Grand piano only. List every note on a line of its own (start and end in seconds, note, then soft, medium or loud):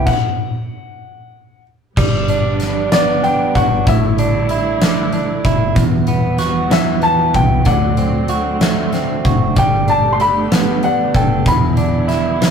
0.06 1.61 F#5 medium
2.92 3.25 D5 medium
3.23 3.53 G5 medium
3.55 3.88 F#5 medium
3.88 5.42 E5 medium
6.72 7.05 E5 medium
7.03 7.36 A5 loud
7.35 7.68 G5 medium
7.67 9.21 F#5 medium
9.58 9.90 G5 medium
9.90 10.14 A5 medium
10.13 10.20 C6 medium
10.21 10.86 B5 loud
10.84 11.16 F#5 medium
11.16 11.48 G5 medium
11.48 12.51 B5 medium